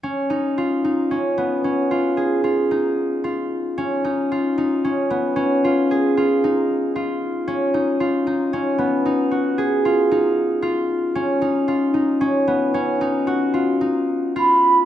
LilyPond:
<<
  \new Staff \with { instrumentName = "Flute" } { \time 7/4 \key des \mixolydian \tempo 4 = 113 r1. r4 | r1. r4 | r1. r4 | r1. ces'''4 | }
  \new Staff \with { instrumentName = "Harp" } { \time 7/4 \key des \mixolydian des'8 ees'8 f'8 ees'8 des'8 ces'8 des'8 f'8 aes'8 f'8 ees'4 f'4 | des'8 ees'8 f'8 ees'8 des'8 ces'8 des'8 f'8 aes'8 f'8 ees'4 f'4 | des'8 ees'8 f'8 ees'8 des'8 ces'8 ees'8 ges'8 aes'8 f'8 ees'4 f'4 | des'8 ees'8 f'8 ees'8 des'8 ces'8 des'8 ees'8 ges'8 f'8 ees'4 f'4 | }
>>